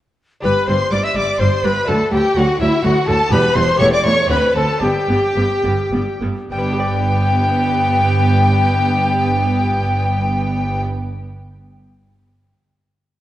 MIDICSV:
0, 0, Header, 1, 8, 480
1, 0, Start_track
1, 0, Key_signature, 1, "major"
1, 0, Tempo, 480769
1, 437, Time_signature, 3, 2, 24, 8
1, 3794, Tempo, 521286
1, 5234, Tempo, 578592
1, 6674, Tempo, 591133
1, 11628, End_track
2, 0, Start_track
2, 0, Title_t, "Violin section"
2, 0, Program_c, 0, 48
2, 442, Note_on_c, 0, 83, 92
2, 664, Note_off_c, 0, 83, 0
2, 680, Note_on_c, 0, 84, 104
2, 915, Note_off_c, 0, 84, 0
2, 922, Note_on_c, 0, 86, 107
2, 1040, Note_off_c, 0, 86, 0
2, 1051, Note_on_c, 0, 88, 101
2, 1162, Note_off_c, 0, 88, 0
2, 1166, Note_on_c, 0, 86, 105
2, 1396, Note_on_c, 0, 84, 99
2, 1397, Note_off_c, 0, 86, 0
2, 1632, Note_off_c, 0, 84, 0
2, 1638, Note_on_c, 0, 83, 111
2, 1877, Note_off_c, 0, 83, 0
2, 1878, Note_on_c, 0, 81, 98
2, 2116, Note_off_c, 0, 81, 0
2, 2122, Note_on_c, 0, 79, 103
2, 2352, Note_off_c, 0, 79, 0
2, 2358, Note_on_c, 0, 78, 106
2, 2592, Note_on_c, 0, 76, 100
2, 2593, Note_off_c, 0, 78, 0
2, 2825, Note_off_c, 0, 76, 0
2, 2833, Note_on_c, 0, 78, 99
2, 3071, Note_off_c, 0, 78, 0
2, 3075, Note_on_c, 0, 81, 122
2, 3307, Note_off_c, 0, 81, 0
2, 3311, Note_on_c, 0, 83, 118
2, 3550, Note_on_c, 0, 84, 122
2, 3551, Note_off_c, 0, 83, 0
2, 3793, Note_off_c, 0, 84, 0
2, 3798, Note_on_c, 0, 85, 127
2, 3842, Note_off_c, 0, 85, 0
2, 3919, Note_on_c, 0, 86, 118
2, 4021, Note_on_c, 0, 85, 113
2, 4025, Note_off_c, 0, 86, 0
2, 4247, Note_off_c, 0, 85, 0
2, 4251, Note_on_c, 0, 83, 99
2, 4483, Note_off_c, 0, 83, 0
2, 4485, Note_on_c, 0, 81, 104
2, 4726, Note_off_c, 0, 81, 0
2, 4734, Note_on_c, 0, 79, 100
2, 5942, Note_off_c, 0, 79, 0
2, 6186, Note_on_c, 0, 79, 85
2, 9691, Note_off_c, 0, 79, 0
2, 11628, End_track
3, 0, Start_track
3, 0, Title_t, "Recorder"
3, 0, Program_c, 1, 74
3, 436, Note_on_c, 1, 71, 85
3, 673, Note_on_c, 1, 72, 85
3, 688, Note_off_c, 1, 71, 0
3, 912, Note_off_c, 1, 72, 0
3, 918, Note_on_c, 1, 74, 94
3, 1041, Note_on_c, 1, 76, 84
3, 1056, Note_off_c, 1, 74, 0
3, 1163, Note_on_c, 1, 74, 94
3, 1178, Note_off_c, 1, 76, 0
3, 1395, Note_on_c, 1, 72, 90
3, 1410, Note_off_c, 1, 74, 0
3, 1642, Note_on_c, 1, 71, 85
3, 1657, Note_off_c, 1, 72, 0
3, 1875, Note_on_c, 1, 69, 91
3, 1890, Note_off_c, 1, 71, 0
3, 2106, Note_off_c, 1, 69, 0
3, 2112, Note_on_c, 1, 67, 91
3, 2353, Note_on_c, 1, 66, 90
3, 2368, Note_off_c, 1, 67, 0
3, 2584, Note_off_c, 1, 66, 0
3, 2590, Note_on_c, 1, 64, 96
3, 2821, Note_off_c, 1, 64, 0
3, 2827, Note_on_c, 1, 66, 101
3, 3068, Note_on_c, 1, 69, 97
3, 3083, Note_off_c, 1, 66, 0
3, 3299, Note_off_c, 1, 69, 0
3, 3305, Note_on_c, 1, 71, 108
3, 3543, Note_on_c, 1, 72, 106
3, 3558, Note_off_c, 1, 71, 0
3, 3787, Note_off_c, 1, 72, 0
3, 3793, Note_on_c, 1, 73, 110
3, 3901, Note_off_c, 1, 73, 0
3, 3907, Note_on_c, 1, 74, 95
3, 4025, Note_off_c, 1, 74, 0
3, 4025, Note_on_c, 1, 74, 96
3, 4064, Note_on_c, 1, 73, 105
3, 4074, Note_off_c, 1, 74, 0
3, 4243, Note_off_c, 1, 73, 0
3, 4249, Note_on_c, 1, 71, 100
3, 4483, Note_off_c, 1, 71, 0
3, 4492, Note_on_c, 1, 69, 88
3, 4729, Note_off_c, 1, 69, 0
3, 4734, Note_on_c, 1, 67, 86
3, 5919, Note_off_c, 1, 67, 0
3, 6189, Note_on_c, 1, 79, 86
3, 9692, Note_off_c, 1, 79, 0
3, 11628, End_track
4, 0, Start_track
4, 0, Title_t, "Violin section"
4, 0, Program_c, 2, 48
4, 437, Note_on_c, 2, 71, 85
4, 662, Note_off_c, 2, 71, 0
4, 682, Note_on_c, 2, 72, 83
4, 761, Note_off_c, 2, 72, 0
4, 918, Note_on_c, 2, 74, 96
4, 1036, Note_off_c, 2, 74, 0
4, 1041, Note_on_c, 2, 76, 73
4, 1157, Note_off_c, 2, 76, 0
4, 1157, Note_on_c, 2, 74, 89
4, 1398, Note_off_c, 2, 74, 0
4, 1399, Note_on_c, 2, 72, 87
4, 1634, Note_off_c, 2, 72, 0
4, 1646, Note_on_c, 2, 71, 80
4, 1880, Note_on_c, 2, 69, 87
4, 1881, Note_off_c, 2, 71, 0
4, 2118, Note_off_c, 2, 69, 0
4, 2124, Note_on_c, 2, 67, 93
4, 2354, Note_off_c, 2, 67, 0
4, 2354, Note_on_c, 2, 66, 93
4, 2592, Note_off_c, 2, 66, 0
4, 2595, Note_on_c, 2, 64, 93
4, 2827, Note_off_c, 2, 64, 0
4, 2837, Note_on_c, 2, 66, 99
4, 3068, Note_off_c, 2, 66, 0
4, 3077, Note_on_c, 2, 69, 90
4, 3305, Note_on_c, 2, 71, 100
4, 3308, Note_off_c, 2, 69, 0
4, 3542, Note_on_c, 2, 72, 107
4, 3543, Note_off_c, 2, 71, 0
4, 3782, Note_on_c, 2, 73, 111
4, 3789, Note_off_c, 2, 72, 0
4, 3899, Note_off_c, 2, 73, 0
4, 3900, Note_on_c, 2, 74, 92
4, 4015, Note_off_c, 2, 74, 0
4, 4018, Note_on_c, 2, 73, 111
4, 4246, Note_off_c, 2, 73, 0
4, 4249, Note_on_c, 2, 71, 93
4, 4482, Note_off_c, 2, 71, 0
4, 4491, Note_on_c, 2, 69, 84
4, 4733, Note_off_c, 2, 69, 0
4, 4739, Note_on_c, 2, 67, 85
4, 5944, Note_off_c, 2, 67, 0
4, 6185, Note_on_c, 2, 67, 86
4, 9690, Note_off_c, 2, 67, 0
4, 11628, End_track
5, 0, Start_track
5, 0, Title_t, "Viola section"
5, 0, Program_c, 3, 48
5, 439, Note_on_c, 3, 55, 65
5, 519, Note_off_c, 3, 55, 0
5, 678, Note_on_c, 3, 55, 60
5, 757, Note_off_c, 3, 55, 0
5, 917, Note_on_c, 3, 55, 67
5, 997, Note_off_c, 3, 55, 0
5, 1155, Note_on_c, 3, 55, 63
5, 1235, Note_off_c, 3, 55, 0
5, 1398, Note_on_c, 3, 55, 66
5, 1477, Note_off_c, 3, 55, 0
5, 1640, Note_on_c, 3, 55, 67
5, 1720, Note_off_c, 3, 55, 0
5, 1881, Note_on_c, 3, 54, 69
5, 1961, Note_off_c, 3, 54, 0
5, 2116, Note_on_c, 3, 54, 59
5, 2196, Note_off_c, 3, 54, 0
5, 2358, Note_on_c, 3, 54, 81
5, 2438, Note_off_c, 3, 54, 0
5, 2600, Note_on_c, 3, 54, 67
5, 2680, Note_off_c, 3, 54, 0
5, 2831, Note_on_c, 3, 54, 81
5, 2911, Note_off_c, 3, 54, 0
5, 3071, Note_on_c, 3, 54, 80
5, 3151, Note_off_c, 3, 54, 0
5, 3311, Note_on_c, 3, 55, 83
5, 3390, Note_off_c, 3, 55, 0
5, 3552, Note_on_c, 3, 55, 73
5, 3632, Note_off_c, 3, 55, 0
5, 3796, Note_on_c, 3, 57, 83
5, 3869, Note_off_c, 3, 57, 0
5, 4021, Note_on_c, 3, 57, 72
5, 4095, Note_off_c, 3, 57, 0
5, 4253, Note_on_c, 3, 60, 76
5, 4327, Note_off_c, 3, 60, 0
5, 4491, Note_on_c, 3, 60, 68
5, 4565, Note_off_c, 3, 60, 0
5, 4735, Note_on_c, 3, 59, 71
5, 4808, Note_off_c, 3, 59, 0
5, 4985, Note_on_c, 3, 59, 57
5, 5059, Note_off_c, 3, 59, 0
5, 5233, Note_on_c, 3, 59, 63
5, 5300, Note_off_c, 3, 59, 0
5, 5467, Note_on_c, 3, 59, 60
5, 5533, Note_off_c, 3, 59, 0
5, 5701, Note_on_c, 3, 59, 61
5, 5768, Note_off_c, 3, 59, 0
5, 5944, Note_on_c, 3, 59, 62
5, 6010, Note_off_c, 3, 59, 0
5, 6187, Note_on_c, 3, 59, 77
5, 9691, Note_off_c, 3, 59, 0
5, 11628, End_track
6, 0, Start_track
6, 0, Title_t, "Cello section"
6, 0, Program_c, 4, 48
6, 439, Note_on_c, 4, 43, 75
6, 519, Note_off_c, 4, 43, 0
6, 685, Note_on_c, 4, 43, 81
6, 764, Note_off_c, 4, 43, 0
6, 921, Note_on_c, 4, 43, 72
6, 1001, Note_off_c, 4, 43, 0
6, 1162, Note_on_c, 4, 43, 72
6, 1241, Note_off_c, 4, 43, 0
6, 1402, Note_on_c, 4, 43, 74
6, 1482, Note_off_c, 4, 43, 0
6, 1639, Note_on_c, 4, 43, 76
6, 1719, Note_off_c, 4, 43, 0
6, 1875, Note_on_c, 4, 38, 83
6, 1955, Note_off_c, 4, 38, 0
6, 2114, Note_on_c, 4, 38, 83
6, 2194, Note_off_c, 4, 38, 0
6, 2354, Note_on_c, 4, 38, 85
6, 2434, Note_off_c, 4, 38, 0
6, 2593, Note_on_c, 4, 38, 76
6, 2673, Note_off_c, 4, 38, 0
6, 2830, Note_on_c, 4, 38, 87
6, 2910, Note_off_c, 4, 38, 0
6, 3069, Note_on_c, 4, 38, 80
6, 3149, Note_off_c, 4, 38, 0
6, 3312, Note_on_c, 4, 40, 95
6, 3392, Note_off_c, 4, 40, 0
6, 3553, Note_on_c, 4, 40, 93
6, 3633, Note_off_c, 4, 40, 0
6, 3795, Note_on_c, 4, 40, 90
6, 3868, Note_off_c, 4, 40, 0
6, 4022, Note_on_c, 4, 40, 84
6, 4096, Note_off_c, 4, 40, 0
6, 4253, Note_on_c, 4, 38, 82
6, 4326, Note_off_c, 4, 38, 0
6, 4488, Note_on_c, 4, 38, 76
6, 4562, Note_off_c, 4, 38, 0
6, 4734, Note_on_c, 4, 43, 78
6, 4807, Note_off_c, 4, 43, 0
6, 4980, Note_on_c, 4, 43, 74
6, 5054, Note_off_c, 4, 43, 0
6, 5233, Note_on_c, 4, 43, 72
6, 5299, Note_off_c, 4, 43, 0
6, 5469, Note_on_c, 4, 43, 69
6, 5535, Note_off_c, 4, 43, 0
6, 5705, Note_on_c, 4, 43, 67
6, 5772, Note_off_c, 4, 43, 0
6, 5951, Note_on_c, 4, 43, 67
6, 6017, Note_off_c, 4, 43, 0
6, 6192, Note_on_c, 4, 43, 82
6, 9693, Note_off_c, 4, 43, 0
6, 11628, End_track
7, 0, Start_track
7, 0, Title_t, "Lute"
7, 0, Program_c, 5, 24
7, 406, Note_on_c, 5, 62, 54
7, 420, Note_on_c, 5, 67, 55
7, 435, Note_on_c, 5, 43, 62
7, 653, Note_off_c, 5, 43, 0
7, 674, Note_on_c, 5, 43, 58
7, 892, Note_off_c, 5, 43, 0
7, 912, Note_on_c, 5, 43, 68
7, 1131, Note_off_c, 5, 43, 0
7, 1154, Note_on_c, 5, 43, 62
7, 1372, Note_off_c, 5, 43, 0
7, 1390, Note_on_c, 5, 43, 61
7, 1610, Note_off_c, 5, 43, 0
7, 1635, Note_on_c, 5, 43, 70
7, 1821, Note_off_c, 5, 62, 0
7, 1829, Note_off_c, 5, 67, 0
7, 1834, Note_on_c, 5, 57, 57
7, 1849, Note_on_c, 5, 62, 62
7, 1852, Note_off_c, 5, 43, 0
7, 1864, Note_on_c, 5, 66, 59
7, 1877, Note_on_c, 5, 38, 64
7, 2092, Note_off_c, 5, 38, 0
7, 2117, Note_on_c, 5, 38, 65
7, 2331, Note_off_c, 5, 38, 0
7, 2355, Note_on_c, 5, 38, 71
7, 2568, Note_off_c, 5, 38, 0
7, 2591, Note_on_c, 5, 38, 69
7, 2806, Note_off_c, 5, 38, 0
7, 2829, Note_on_c, 5, 38, 72
7, 3045, Note_off_c, 5, 38, 0
7, 3065, Note_on_c, 5, 38, 79
7, 3247, Note_off_c, 5, 57, 0
7, 3255, Note_off_c, 5, 62, 0
7, 3262, Note_off_c, 5, 66, 0
7, 3281, Note_on_c, 5, 59, 66
7, 3283, Note_off_c, 5, 38, 0
7, 3300, Note_on_c, 5, 67, 68
7, 3312, Note_on_c, 5, 40, 74
7, 3527, Note_off_c, 5, 40, 0
7, 3553, Note_on_c, 5, 40, 72
7, 3746, Note_off_c, 5, 59, 0
7, 3750, Note_on_c, 5, 57, 70
7, 3753, Note_off_c, 5, 67, 0
7, 3765, Note_on_c, 5, 67, 71
7, 3770, Note_off_c, 5, 40, 0
7, 3793, Note_on_c, 5, 40, 76
7, 3998, Note_off_c, 5, 40, 0
7, 4021, Note_on_c, 5, 40, 76
7, 4210, Note_off_c, 5, 57, 0
7, 4213, Note_on_c, 5, 60, 63
7, 4224, Note_off_c, 5, 67, 0
7, 4224, Note_on_c, 5, 62, 60
7, 4229, Note_off_c, 5, 40, 0
7, 4239, Note_off_c, 5, 62, 0
7, 4243, Note_on_c, 5, 66, 60
7, 4256, Note_on_c, 5, 38, 67
7, 4467, Note_off_c, 5, 38, 0
7, 4489, Note_on_c, 5, 38, 67
7, 4692, Note_off_c, 5, 60, 0
7, 4695, Note_on_c, 5, 59, 56
7, 4704, Note_off_c, 5, 66, 0
7, 4708, Note_off_c, 5, 38, 0
7, 4708, Note_on_c, 5, 62, 53
7, 4722, Note_on_c, 5, 67, 54
7, 4738, Note_on_c, 5, 43, 58
7, 4959, Note_off_c, 5, 43, 0
7, 4988, Note_on_c, 5, 43, 63
7, 5212, Note_off_c, 5, 43, 0
7, 5238, Note_on_c, 5, 43, 65
7, 5444, Note_off_c, 5, 43, 0
7, 5468, Note_on_c, 5, 43, 60
7, 5679, Note_off_c, 5, 43, 0
7, 5707, Note_on_c, 5, 43, 56
7, 5921, Note_off_c, 5, 43, 0
7, 5948, Note_on_c, 5, 43, 62
7, 6136, Note_off_c, 5, 59, 0
7, 6142, Note_off_c, 5, 62, 0
7, 6148, Note_off_c, 5, 67, 0
7, 6165, Note_off_c, 5, 43, 0
7, 6192, Note_on_c, 5, 55, 59
7, 6247, Note_on_c, 5, 59, 64
7, 6308, Note_on_c, 5, 62, 60
7, 6365, Note_on_c, 5, 67, 65
7, 6419, Note_off_c, 5, 67, 0
7, 6422, Note_on_c, 5, 74, 58
7, 9764, Note_off_c, 5, 55, 0
7, 9817, Note_off_c, 5, 59, 0
7, 9877, Note_off_c, 5, 62, 0
7, 9989, Note_off_c, 5, 74, 0
7, 11628, End_track
8, 0, Start_track
8, 0, Title_t, "Double bass section"
8, 0, Program_c, 6, 48
8, 439, Note_on_c, 6, 31, 80
8, 519, Note_off_c, 6, 31, 0
8, 680, Note_on_c, 6, 31, 75
8, 760, Note_off_c, 6, 31, 0
8, 917, Note_on_c, 6, 31, 70
8, 997, Note_off_c, 6, 31, 0
8, 1157, Note_on_c, 6, 31, 73
8, 1237, Note_off_c, 6, 31, 0
8, 1398, Note_on_c, 6, 31, 80
8, 1478, Note_off_c, 6, 31, 0
8, 1635, Note_on_c, 6, 31, 71
8, 1715, Note_off_c, 6, 31, 0
8, 1877, Note_on_c, 6, 38, 85
8, 1957, Note_off_c, 6, 38, 0
8, 2113, Note_on_c, 6, 38, 71
8, 2193, Note_off_c, 6, 38, 0
8, 2351, Note_on_c, 6, 38, 84
8, 2431, Note_off_c, 6, 38, 0
8, 2591, Note_on_c, 6, 38, 85
8, 2671, Note_off_c, 6, 38, 0
8, 2826, Note_on_c, 6, 38, 90
8, 2906, Note_off_c, 6, 38, 0
8, 3069, Note_on_c, 6, 38, 80
8, 3149, Note_off_c, 6, 38, 0
8, 3303, Note_on_c, 6, 28, 99
8, 3383, Note_off_c, 6, 28, 0
8, 3545, Note_on_c, 6, 28, 79
8, 3625, Note_off_c, 6, 28, 0
8, 3792, Note_on_c, 6, 28, 89
8, 3865, Note_off_c, 6, 28, 0
8, 4013, Note_on_c, 6, 28, 81
8, 4087, Note_off_c, 6, 28, 0
8, 4246, Note_on_c, 6, 38, 90
8, 4320, Note_off_c, 6, 38, 0
8, 4481, Note_on_c, 6, 38, 67
8, 4554, Note_off_c, 6, 38, 0
8, 4728, Note_on_c, 6, 31, 78
8, 4802, Note_off_c, 6, 31, 0
8, 4978, Note_on_c, 6, 31, 66
8, 5052, Note_off_c, 6, 31, 0
8, 5232, Note_on_c, 6, 31, 74
8, 5298, Note_off_c, 6, 31, 0
8, 5464, Note_on_c, 6, 31, 70
8, 5530, Note_off_c, 6, 31, 0
8, 5697, Note_on_c, 6, 31, 79
8, 5764, Note_off_c, 6, 31, 0
8, 5939, Note_on_c, 6, 31, 66
8, 6005, Note_off_c, 6, 31, 0
8, 6185, Note_on_c, 6, 31, 87
8, 9690, Note_off_c, 6, 31, 0
8, 11628, End_track
0, 0, End_of_file